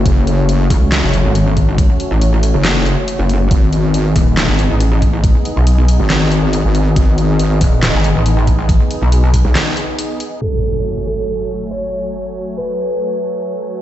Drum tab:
HH |xxxoxxxx|xxxoxxxx|xxxoxxxx|xxxoxxxx|
CP |----x---|----x---|----x---|----x---|
SD |----o---|----o---|----o---|----o---|
BD |o--o---o|o-------|o--o---o|o-------|

HH |xxxoxxxx|xxxoxxxx|--------|--------|
CP |----x---|----x---|--------|--------|
SD |----o---|----o---|--------|--------|
BD |o--o---o|o--o----|--------|--------|